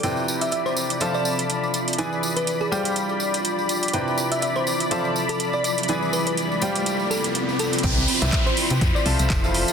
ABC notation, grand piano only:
X:1
M:4/4
L:1/16
Q:"Swing 16ths" 1/4=123
K:C
V:1 name="Grand piano"
[C,EBcdg]8 [F,FAcea]8 | [E,E^GBd^g]6 [=G,F=Gcd=g]8- [G,FGcdg]2 | [C,EBcdg]8 [F,FAcea]8 | [E,E^GBd^g]6 [=G,F=Gcd=g]8- [G,FGcdg]2 |
[C,EBcdg] z2 [C,EBcde] z3 [F,EBcdg] z2 [F,FAcea]3 [F,FAcea]2 z |]